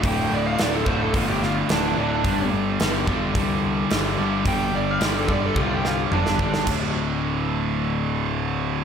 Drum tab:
CC |----------------|----------------|----------------|x---------------|
HH |o---o---o---o---|o---o---o---o---|o---o-----------|----------------|
SD |----o-----o-o---|----o-------o---|----o-----o--o-o|----------------|
T1 |----------------|----------------|--------o-------|----------------|
T2 |----------------|----------------|------------o---|----------------|
BD |o-----o-o-------|o-----o-o-------|o-----o-o-----o-|o---------------|